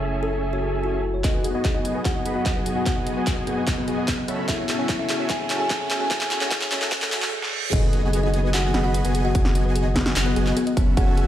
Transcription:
Already playing: F#1 C#3 A3 C#4 E4 G#4 A4 E5 G#5
0.02 A4
0.13 E5
0.23 A4
0.33 E5
0.43 E5
0.53 F#4 C#5
0.63 G#4
0.73 A4
0.83 E4 F#4
0.94 E5
1.04 A4
1.14 C#5
1.24 F#2 B2 F#3 B3 D#4 F#4 G#4 D#5 G#5, kick, clap, closed hi-hat, riser
1.34 B4
1.44 G#4, closed hi-hat
1.55 B3 F#4 G#4 D#5 G#5
1.65 G#4, kick, clap, closed hi-hat
1.75 D#4 D#5
1.85 D#5, closed hi-hat
1.95 B4
2.05 F#4 G#4 F#5, kick, clap, closed hi-hat
2.15 D#5
2.25 B3 F#4 G#4 D#5 B5, closed hi-hat
2.35 F#4 D#5 F#5
2.46 D#5, kick, clap, closed hi-hat
2.56 B3 F#4 G#4 B4 D#5 G#5
2.66 G#4, closed hi-hat
2.76 F#4 D#5 F#5
2.86 B3 F#4 G#4 D#5 G#5, kick, clap, closed hi-hat
2.96 D#5
3.07 D#5, closed hi-hat
3.17 B3 F#4 G#4 B4 D#5 G#5
3.27 G#4, kick, clap, closed hi-hat
3.37 D#5
3.47 B3 G#4 B4, closed hi-hat
3.57 D#5
3.67 B3 F#4 G#4 D#5 F#5, kick, clap, closed hi-hat
3.77 B3 B4
3.88 B3 F#4 G#4 D#5 G#5, closed hi-hat
3.98 D#5
4.08 B3 G#4 B4, kick, clap, closed hi-hat
4.18 D#5
4.28 A2 C#4 E4 F#4 A4 C#5 E5 B5, closed hi-hat
4.39 A4
4.48 C#4 E4 F#4 G#4 A4 E5 G#5, kick, clap, closed hi-hat
4.59 C#5
4.69 G#4, clap, closed hi-hat
4.79 C#4 F#4 A4 C#5 E5 G#5
4.89 kick, clap, closed hi-hat
4.99 E4 A4 E5
5.09 G#4, clap, closed hi-hat
5.20 C#5
5.30 G#4 G#5, kick, clap, closed hi-hat
5.40 C#5
5.50 C#4 F#4 A4 C#5 E5 A5, clap, closed hi-hat
5.60 G#4 A4 G#5
5.70 G#4, kick, clap, closed hi-hat
5.80 C#4 F#4 A4 C#5 E5 G#5
5.90 G#4, clap, closed hi-hat
6.00 G#4 C#5 G#5
6.11 C#4 F#4 A4 C#5 E5 G#5, kick, clap, closed hi-hat
6.21 A4, clap
6.31 G#4, clap, closed hi-hat
6.41 C#4 F#4 A4 C#5 E5 G#5, clap
6.51 G#4, kick, clap, closed hi-hat
6.61 C#5, clap
6.71 C#4 C#5, clap, closed hi-hat
6.82 A4, clap
6.92 C#4 F#4 G#4 A4 E5 F#5, kick, clap, closed hi-hat, reverse cymbal
7.02 A3 A4 C#5, clap
7.12 C#4 F#4 A4 E5 G#5, clap, closed hi-hat
7.22 A4, clap
7.32 G#3 G#4
7.42 snare
7.53 mid tom
7.63 mid tom
7.73 F#1 D#3 F#3 B3 D#4 F#4 G#4 D#5 G#5, kick, closed hi-hat, crash
7.83 B4
7.93 G#4, closed hi-hat
8.03 F#1 B3 F#4 G#4 D#5 G#5
8.13 G#4, closed hi-hat
8.23 D#4 D#5
8.34 D#5, closed hi-hat
8.44 B4
8.54 F#4 G#4 F#5, clap, closed hi-hat
8.64 D#5
8.74 F#1 B3 F#4 G#4 D#5 B5, snare, closed hi-hat
8.84 F#4 D#5 F#5
8.94 D#5, closed hi-hat
9.05 F#1 B3 F#4 G#4 B4 D#5 G#5, closed hi-hat
9.15 G#4, closed hi-hat
9.25 F#4 D#5 F#5
9.35 F#1 B3 F#4 G#4 D#5 G#5, kick, closed hi-hat
9.45 D#5, snare
9.55 D#5, closed hi-hat
9.65 F#1 B3 F#4 G#4 B4 D#5 G#5
9.75 G#4, closed hi-hat
9.86 D#5
9.96 B3 G#4 B4, kick, snare, closed hi-hat
10.06 D#5, snare
10.16 F#1 B3 F#4 G#4 D#5 F#5, clap, closed hi-hat
10.26 B3 B4
10.36 F#1 B3 F#4 G#4 D#5 G#5, closed hi-hat
10.46 D#5, clap
10.57 B3 G#4 B4, closed hi-hat
10.67 D#5, closed hi-hat
10.77 F#1 E3 A3 C#4 F#4 A4 C#5 E5 B5, kick, closed hi-hat
10.87 A4
10.97 F#1 C#4 F#4 G#4 A4 E5 F#5 G#5, kick, closed hi-hat
11.07 C#5
11.17 G#4, closed hi-hat

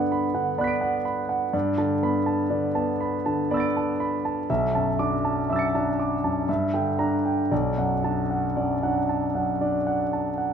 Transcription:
Already playing: G2 D3 B3 D5 F#5 B5
0.12 B5
0.35 D3 F#5
0.58 B3 D5 B5 F#6
0.64 B6 D7
0.81 F#5
1.05 B5
1.29 F#5
1.53 G2 D5
1.78 D3 A5
2.03 B3 B5
2.26 A5
2.50 D3 D5
2.75 B3 A5
3.01 B5
3.26 D3 A5
3.51 B3 D5 B5 E6
3.57 A6 D7
3.77 A5
4.00 B5
4.25 A5
4.50 B1 E5
4.75 F#2 A5
4.99 D4 D6
5.25 A5
5.50 F#2 E5 D6 E6
5.56 A6 C#7
5.75 D4 A5
5.99 D6
6.24 F#2 A5
6.49 G2 E5
6.74 D3 G5
6.99 D4 A#5
7.25 G5
7.51 B1 D5
7.78 F#2 F#5
8.04 D4 A5
8.31 F#5
8.56 F#2 D5
8.83 D4 F#5
9.09 A5
9.35 F#2 F#5
9.61 D4 D5
9.87 F#5
10.13 A5
10.38 F#5

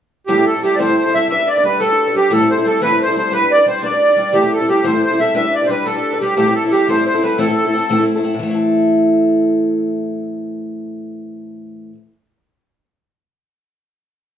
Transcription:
0.27 A2 E3 G3 C4 E4 G4 A4
0.37 G3 C4 E4 A4
0.46 A4
0.54 G3 C4 E4 A4
0.63 G3 C4 E4 G4 A4
0.75 A2 E3 C5 D5
0.79 G3 C4 E4 A4
0.88 G3 C4 E4 A4
0.98 C5
1.05 G3 C4 E4 A4
1.14 G3 C4 E4 A4 E5
1.29 G3 D4 G4 B4 E5
1.39 D4 G4 B4
1.48 D5
1.57 D4 G4 B4
1.64 G3 D4 G4 B4
1.80 G3 D4 G4 A4 B4
1.90 D4 G4 B4
2.07 D4 G4 B4
2.15 G3 D4 G4 B4
2.30 A2 E3 G3 C4 E4 A4
2.40 G3 C4 E4 A4
2.51 C5
2.57 G3 C4 E4 A4
2.65 G3 C4 E4 A4
2.80 A2 E3 G3 C4 E4 A4 B4
2.90 G3 C4 E4 A4
3.02 C5
3.07 G3 C4 E4 A4
3.16 G3 C4 E4 A4 C5
3.31 G3 D4 G4 B4
3.41 D4 G4 B4
3.51 D5
3.58 D4 G4 B4
3.66 G3 D4 G4 B4 C5
3.82 G3 D4 G4 B4 D5
3.91 D4 G4 B4
4.09 D4 G4 B4
4.16 G3 D4 G4 B4
4.32 A2 E3 G3 C4 E4 G4 A4
4.42 G3 C4 E4 A4
4.53 A4
4.59 G3 C4 E4 A4
4.68 G3 C4 E4 G4 A4
4.84 A2 E3 G3 C4 E4 A4 C5
4.92 G3 C4 E4 A4
5.04 C5
5.10 G3 C4 E4 A4
5.18 G3 C4 E4 A4 E5
5.35 G3 D4 G4 B4 E5
5.44 D4 G4 B4
5.55 D5
5.62 D4 G4 B4
5.66 G3 D4 C5
5.70 G4 B4
5.85 G3 D4 G4 A4 B4
5.95 D4 G4 B4
6.13 D4 G4 B4
6.21 G3 D4 G4 B4
6.36 A2 E3 G3 C4 E4 G4 A4
6.46 G3 C4 E4 A4
6.55 A4
6.64 G3 C4 E4 A4
6.71 G3 C4 E4 G4 A4
6.88 A2 E3 G3 C4 E4 A4 C5
6.97 G3 C4 E4 A4
7.06 C5
7.14 G3 C4 E4 A4
7.22 G3 C4 E4 A4 B4
7.38 A2 E3 A3 C4 E4 A4
7.47 A3 C4 E4 A4
7.65 A3 C4 E4 A4
7.73 A3 C4 E4 A4
7.89 A2 E3 A3 C4 E4 A4
7.98 A3 C4 E4 A4
8.16 A3 C4 E4 A4
8.23 A3 C4 E4 A4
8.34 A2
8.39 E3 A3
8.47 C4 E4
8.54 A4

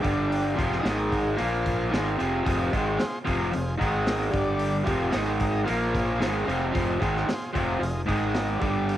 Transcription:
0.01 G1 G2 D3 G3 D4 G4 D5, kick, open hi-hat
0.32 open hi-hat
0.54 F2 C3 F3 F4 G#4 C5
0.59 F1, kick, open hi-hat
0.72 snare
0.79 D#4 G#4 D#5
0.83 G#1 G#2 D#3 G#3, snare, open hi-hat
1.08 D#4 G#4 A#4
1.12 kick, open hi-hat
1.35 A#2 F3 A#3 F4 A#4 F5, open hi-hat
1.40 A#1
1.61 F4 A#4 F5
1.66 kick, open hi-hat
1.89 G#1 G#2 D#3 G#3 F4 G#4 C5
1.94 snare, open hi-hat
2.18 F1 F2 C3 F3 F4 G#4 C5, open hi-hat
2.43 F1 F2 C3 F4 G#4 D#5, kick, open hi-hat
2.47 F3
2.72 G#1 G#2 D#3 G#3 F4 G#4 C5, kick, open hi-hat
2.96 F4 G#4 C5, muted overdriven electric guitar stroke, snare, open hi-hat
3.03 muted fingered electric bass stroke
3.25 F1 F2 C3 F3 F4 G#4 A#4, kick, open hi-hat
3.52 F1 F2 C3 C5, open hi-hat
3.56 F4 G#4
3.78 G#1 G#2 D#3 G#3, kick
3.82 D#4 G#4 D#5, open hi-hat
4.07 snare, open hi-hat
4.30 G1 G2 D3 G3, kick, open hi-hat
4.35 D4 G4 D5
4.59 open hi-hat
4.83 F2 C3 F3 F4 G#4 C5, kick, open hi-hat
4.87 F1
5.10 G#1 G#2 D#3 G#3 D#4 G#4 D#5, snare, open hi-hat
5.40 D#4 G#4 D#5, kick, open hi-hat
5.64 A#2 F3 A#3 F4 A#4 F5, open hi-hat
5.70 A#1
5.89 F4 A#4 C#5
5.95 kick, open hi-hat
6.15 G#2 F4 G#4 C5
6.20 G#1 D#3 G#3, snare, open hi-hat
6.43 F2 F4 G#4 A#4
6.47 F1 C3 F3, open hi-hat
6.71 F1 F2 C3 F3 F4 G#4 C5
6.75 kick, open hi-hat
7.00 G#1 G#2 D#3 G#3 F4 G#4 C5, kick, open hi-hat
7.17 snare
7.28 muted overdriven electric guitar stroke, snare, open hi-hat
7.32 F4 G#4 C5
7.52 F1 F2 C3 F3 F4 G#4 C5, kick, open hi-hat
7.80 F1 F2 C3 F4 G#4 D#5, open hi-hat
8.06 G#1 G#2 D#3 G#3 D#4 G#4 D#5, kick, open hi-hat
8.35 snare, open hi-hat
8.56 D4 G4 D5
8.60 G1 G2 D3 G3, kick, open hi-hat
8.89 open hi-hat

